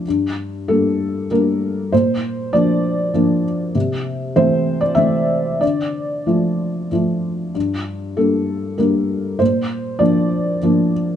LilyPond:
<<
  \new Staff \with { instrumentName = "Felt piano" } { \time 3/4 \key g \dorian \tempo 4 = 98 r4 a'4 bes'4 | c''4 d''4. r8 | r4 c''8. d''16 e''4 | d''2 r4 |
r4 a'4 bes'4 | c''4 d''4. r8 | }
  \new Staff \with { instrumentName = "Felt piano" } { \time 3/4 \key g \dorian g,4 <g bes d'>4 <g bes d'>4 | bes,4 <f bes d'>4 <f bes d'>4 | c4 <e a c'>4 <e a c'>4 | d4 <f a f'>4 <f a f'>4 |
g,4 <g bes d'>4 <g bes d'>4 | bes,4 <f bes d'>4 <f bes d'>4 | }
>>